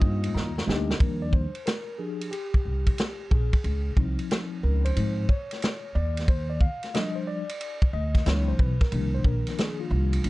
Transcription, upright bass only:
0, 0, Header, 1, 2, 480
1, 0, Start_track
1, 0, Key_signature, -3, "major"
1, 0, Tempo, 659341
1, 732, Time_signature, 4, 2, 24, 8
1, 7495, End_track
2, 0, Start_track
2, 0, Title_t, "Upright bass"
2, 0, Program_c, 0, 32
2, 11, Note_on_c, 0, 43, 77
2, 202, Note_off_c, 0, 43, 0
2, 251, Note_on_c, 0, 39, 86
2, 442, Note_off_c, 0, 39, 0
2, 491, Note_on_c, 0, 38, 88
2, 682, Note_off_c, 0, 38, 0
2, 730, Note_on_c, 0, 39, 97
2, 1047, Note_off_c, 0, 39, 0
2, 1932, Note_on_c, 0, 36, 74
2, 2123, Note_off_c, 0, 36, 0
2, 2412, Note_on_c, 0, 34, 88
2, 2537, Note_off_c, 0, 34, 0
2, 2651, Note_on_c, 0, 37, 93
2, 2842, Note_off_c, 0, 37, 0
2, 2888, Note_on_c, 0, 36, 90
2, 3015, Note_off_c, 0, 36, 0
2, 3372, Note_on_c, 0, 37, 88
2, 3563, Note_off_c, 0, 37, 0
2, 3614, Note_on_c, 0, 44, 85
2, 3804, Note_off_c, 0, 44, 0
2, 4333, Note_on_c, 0, 39, 96
2, 4839, Note_off_c, 0, 39, 0
2, 5775, Note_on_c, 0, 38, 83
2, 5965, Note_off_c, 0, 38, 0
2, 6015, Note_on_c, 0, 37, 108
2, 6204, Note_off_c, 0, 37, 0
2, 6255, Note_on_c, 0, 35, 89
2, 6379, Note_off_c, 0, 35, 0
2, 6493, Note_on_c, 0, 36, 108
2, 6683, Note_off_c, 0, 36, 0
2, 6731, Note_on_c, 0, 34, 89
2, 6857, Note_off_c, 0, 34, 0
2, 7211, Note_on_c, 0, 36, 99
2, 7402, Note_off_c, 0, 36, 0
2, 7454, Note_on_c, 0, 39, 97
2, 7495, Note_off_c, 0, 39, 0
2, 7495, End_track
0, 0, End_of_file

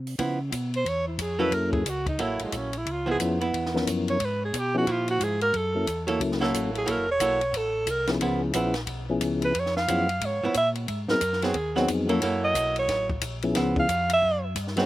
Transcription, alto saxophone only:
0, 0, Header, 1, 2, 480
1, 0, Start_track
1, 0, Tempo, 334262
1, 276, Time_signature, 4, 2, 24, 8
1, 21336, End_track
2, 0, Start_track
2, 0, Title_t, "Alto saxophone"
2, 0, Program_c, 0, 65
2, 1098, Note_on_c, 0, 72, 94
2, 1270, Note_on_c, 0, 73, 96
2, 1292, Note_off_c, 0, 72, 0
2, 1545, Note_off_c, 0, 73, 0
2, 1553, Note_on_c, 0, 64, 47
2, 1742, Note_on_c, 0, 68, 89
2, 1764, Note_off_c, 0, 64, 0
2, 2004, Note_on_c, 0, 71, 107
2, 2025, Note_off_c, 0, 68, 0
2, 2212, Note_on_c, 0, 70, 88
2, 2233, Note_off_c, 0, 71, 0
2, 2472, Note_off_c, 0, 70, 0
2, 2480, Note_on_c, 0, 68, 74
2, 2716, Note_on_c, 0, 66, 81
2, 2737, Note_off_c, 0, 68, 0
2, 2984, Note_off_c, 0, 66, 0
2, 2993, Note_on_c, 0, 63, 82
2, 3196, Note_on_c, 0, 64, 91
2, 3218, Note_off_c, 0, 63, 0
2, 3474, Note_off_c, 0, 64, 0
2, 3505, Note_on_c, 0, 56, 65
2, 3698, Note_on_c, 0, 61, 68
2, 3720, Note_off_c, 0, 56, 0
2, 3989, Note_on_c, 0, 64, 78
2, 4010, Note_off_c, 0, 61, 0
2, 4191, Note_on_c, 0, 65, 74
2, 4212, Note_off_c, 0, 64, 0
2, 4451, Note_off_c, 0, 65, 0
2, 4468, Note_on_c, 0, 68, 90
2, 4560, Note_off_c, 0, 68, 0
2, 5888, Note_on_c, 0, 73, 93
2, 6099, Note_on_c, 0, 71, 83
2, 6121, Note_off_c, 0, 73, 0
2, 6364, Note_off_c, 0, 71, 0
2, 6388, Note_on_c, 0, 68, 76
2, 6585, Note_on_c, 0, 67, 88
2, 6607, Note_off_c, 0, 68, 0
2, 6848, Note_off_c, 0, 67, 0
2, 6860, Note_on_c, 0, 66, 92
2, 7056, Note_on_c, 0, 65, 89
2, 7077, Note_off_c, 0, 66, 0
2, 7319, Note_off_c, 0, 65, 0
2, 7328, Note_on_c, 0, 66, 94
2, 7513, Note_on_c, 0, 68, 83
2, 7535, Note_off_c, 0, 66, 0
2, 7772, Note_off_c, 0, 68, 0
2, 7781, Note_on_c, 0, 70, 102
2, 7988, Note_on_c, 0, 69, 86
2, 8010, Note_off_c, 0, 70, 0
2, 8749, Note_off_c, 0, 69, 0
2, 9732, Note_on_c, 0, 68, 89
2, 9924, Note_on_c, 0, 70, 87
2, 9945, Note_off_c, 0, 68, 0
2, 10196, Note_off_c, 0, 70, 0
2, 10213, Note_on_c, 0, 73, 107
2, 10868, Note_on_c, 0, 69, 89
2, 10890, Note_off_c, 0, 73, 0
2, 11349, Note_on_c, 0, 70, 93
2, 11371, Note_off_c, 0, 69, 0
2, 11629, Note_off_c, 0, 70, 0
2, 13559, Note_on_c, 0, 71, 96
2, 13778, Note_on_c, 0, 73, 101
2, 13799, Note_off_c, 0, 71, 0
2, 14017, Note_off_c, 0, 73, 0
2, 14025, Note_on_c, 0, 77, 102
2, 14724, Note_on_c, 0, 73, 86
2, 14746, Note_off_c, 0, 77, 0
2, 15178, Note_off_c, 0, 73, 0
2, 15185, Note_on_c, 0, 76, 109
2, 15354, Note_off_c, 0, 76, 0
2, 15941, Note_on_c, 0, 70, 94
2, 16432, Note_on_c, 0, 68, 97
2, 16453, Note_off_c, 0, 70, 0
2, 16902, Note_off_c, 0, 68, 0
2, 17868, Note_on_c, 0, 75, 110
2, 18307, Note_off_c, 0, 75, 0
2, 18362, Note_on_c, 0, 73, 100
2, 18794, Note_off_c, 0, 73, 0
2, 19810, Note_on_c, 0, 77, 109
2, 20239, Note_off_c, 0, 77, 0
2, 20299, Note_on_c, 0, 76, 116
2, 20724, Note_off_c, 0, 76, 0
2, 21336, End_track
0, 0, End_of_file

